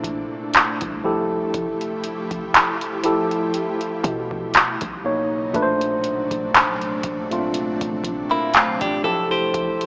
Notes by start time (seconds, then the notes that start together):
Already playing: A#1 A#2 C3 A3 D4 E4
0.04 kick, closed hi-hat
0.54 clap, closed hi-hat
0.81 C2, kick, closed hi-hat
1.04 F3 E4 G4 A4
1.54 F1, kick, closed hi-hat
1.81 closed hi-hat
2.04 closed hi-hat
2.31 F1, kick, closed hi-hat
2.54 clap, closed hi-hat
2.81 closed hi-hat
3.03 F3 E4 G4 A4, closed hi-hat
3.31 closed hi-hat
3.54 closed hi-hat
3.81 closed hi-hat
4.04 B2, kick, closed hi-hat
4.31 kick
4.54 B2 C#3 F#3 D#4, clap, closed hi-hat
4.81 B1, kick, closed hi-hat
5.04 B2 A#3 D#4 C#5
5.54 A#1 A#2 C3 A3 D4 B4, kick, closed hi-hat
5.62 C5
5.81 closed hi-hat
6.04 closed hi-hat
6.31 A#1, kick, closed hi-hat
6.55 clap, closed hi-hat
6.81 closed hi-hat
7.03 A#1, kick, closed hi-hat
7.30 A#2 A3 C4 F4, closed hi-hat
7.38 D4
7.54 closed hi-hat
7.81 A#1, kick, closed hi-hat
8.04 kick, closed hi-hat
8.31 A#3 E4
8.54 C4 F4, clap, closed hi-hat
8.81 F1 D4 G4, kick, closed hi-hat
9.04 F3 E4 G4 A4
9.31 G4 C5
9.54 F1, kick, closed hi-hat
9.81 closed hi-hat